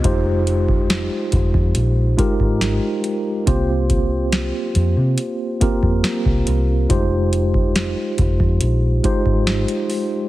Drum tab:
HH |x-x-x-x-x-x-x-x-|x-x-x-x-x-x-x-x-|x-x-x-x-x-x-xxo-|
SD |----o-------o---|----o-------o---|----o-------o---|
BD |o--o--oo--oo----|o-o-------oo-o--|o--o--oo--oo----|